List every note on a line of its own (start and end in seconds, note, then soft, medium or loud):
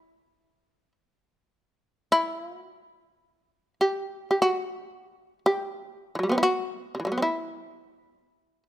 0.00 0.92 E4 medium
2.12 2.41 E4 medium
2.41 2.60 F4 medium
2.60 3.73 F#4 medium
3.81 4.28 G4 medium
4.31 4.39 G4 medium
4.42 5.38 F#4 medium
5.46 6.31 G4 medium
6.15 6.19 E3 soft
6.15 6.36 F#3 soft
6.23 6.29 G3 soft
6.29 6.46 B3 soft
6.29 6.37 C4 soft
6.38 6.42 E4 medium
6.43 7.17 F#4 medium
6.95 6.99 C3 soft
7.00 7.04 E3 soft
7.05 7.21 F#3 soft
7.05 7.11 G3 soft
7.12 7.29 B3 soft
7.18 7.22 C4 soft
7.22 8.63 E4 medium